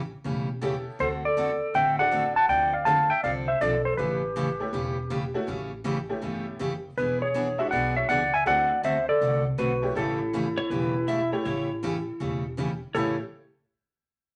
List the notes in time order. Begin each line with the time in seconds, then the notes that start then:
0.24 E1 C#3 E3 A3 C#4 G4
0.61 C#3 E3 A3 B3 C#4 E4 G4 A4
0.99 D2 D3 A3 C4 F#4 A4 C5
1.25 A4 D5
1.37 D3 A3 C4 F#4 A4
1.74 A1 D3 A3 C4 F#4 A4 E5 G5
1.98 C4 D4 E4 F#4 A4 D5 F#5
2.11 D3 A3 C4 F#4 A4
2.36 F#5 A5
2.48 D2 D3 F3 C4 D4 A4 D5 G5
2.74 D5 F5
2.85 D3 F3 A3 C4 D4 F4 A4 F5 A5
3.10 E5 G5
3.23 C2 D3 F3 C4 D4 A4 D5 F5
3.48 C5 E5
3.61 B1 D3 F3 C4 D4 A4 D5
3.85 A4 C5
3.97 A1 C#3 E3 A3 C#4 G4 B4
4.36 C#3 E3 A3 C#4 G4
4.60 A3 B3 C#4 E4 G4
4.73 E1 C#3 E3 A3 C#4 G4
5.10 C#3 E3 A3 C#4 G4
5.34 A3 B3 C#4 E4 F#4
5.47 A1 C#3 E3 A3 C#4 G4
5.84 C#3 E3 A3 C#4 G4
6.09 A3 B3 C#4 E4 G4
6.22 G1 C#3 E3 A3 C#4 G4
6.59 F#1 C#3 E3 A3 C#4 G4
6.97 E1 E3 B3 D4 G#4 B4
7.22 G#4 C#5
7.34 E3 B3 D4 G#4
7.58 G#3 B3 D4 E4 F#4 C#5 E5
7.71 B1 E3 B3 D4 G#4 D5 F#5
7.96 C#5 E5
8.09 C#2 E3 B3 D4 G#4 D5 F#5
8.34 E5 G#5
8.46 D2 D3 A3 C4 D4 E4 F#4 A4 D5 F#5
8.83 D3 A3 C4 F#4 A4 C5 E5
9.09 A4 D5
9.21 C2 D3 A3 C4 F#4 A4
9.58 B1 D3 A3 C4 F#4 A4 B4
9.82 A3 B3 C#4 E4 G4
9.95 A1 C#3 E3 A3 B3 C#4 E4 G4 A4
10.33 C#3 E3 A3 C#4 G4
10.58 C#5
10.70 E1 C#3 E3 A3 C#4 G4 B4
11.08 C#3 E3 A3 C#4 G4 E5
11.32 A3 B3 C#4 E4 G4 C#5
11.45 A1 C#3 E3 A3 C#4 G4 C#5
11.83 C#3 E3 A3 C#4 G4
12.20 E1 C#3 E3 A3 C#4 G4
12.57 C#3 E3 A3 C#4 G4
12.94 A1 A2 C#3 E3 A3 B3 C#4 E4 G4 A4 C#5